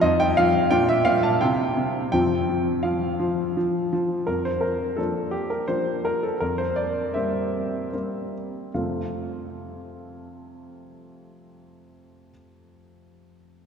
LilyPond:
<<
  \new Staff \with { instrumentName = "Grand piano" } { \time 3/4 \key f \major \tempo 4 = 83 << { ees''16 g''16 f''8 g''16 e''16 f''16 a''16 g''4 | g''4 f''4. r8 | bes'16 c''16 bes'8 a'8 g'16 bes'16 c''8 bes'16 a'16 | bes'16 c''16 d''8 e''4. r8 |
<f, c a c' f' a' f''>2.~ | <f, c a c' f' a' f''>2. | } \\ { <ees' f'>4 <d' f'>4 <c' e'>4 | <c' f'>2. | r2. | r2. |
r2. | r2. | } >> }
  \new Staff \with { instrumentName = "Grand piano" } { \clef bass \time 3/4 \key f \major <f, f>8 f8 bes,8 bes,8 c8 c8 | <f, f>8 f8 f8 f8 f8 f8 | f,4 <f bes d'>4 <f bes d'>4 | f,4 <g bes c'>4 <g bes c'>4 |
r2. | r2. | }
>>